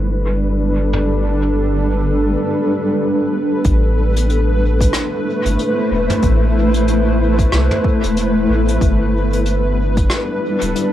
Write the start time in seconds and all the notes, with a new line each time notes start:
Already playing: G1 G3 D4 E4 A4 B4
0.93 mid tom
3.64 A1 A3, kick, closed hi-hat
4.16 E4, closed hi-hat
4.30 closed hi-hat
4.59 C5
4.80 kick, closed hi-hat
4.93 cross-stick, closed hi-hat
5.45 G1, closed hi-hat
5.59 closed hi-hat
5.91 E1
6.10 closed hi-hat, mid tom
6.22 A1, kick, closed hi-hat
6.74 closed hi-hat
6.88 closed hi-hat
7.39 kick, closed hi-hat
7.52 C2, cross-stick, closed hi-hat
7.71 mid tom
7.84 kick
8.04 E1, closed hi-hat
8.17 closed hi-hat
8.49 A1
8.68 closed hi-hat
8.81 G1 G3, kick, closed hi-hat
9.17 D4
9.33 closed hi-hat
9.46 closed hi-hat
9.56 A4
9.97 kick, closed hi-hat
10.10 cross-stick, closed hi-hat
10.61 D1, closed hi-hat
10.76 closed hi-hat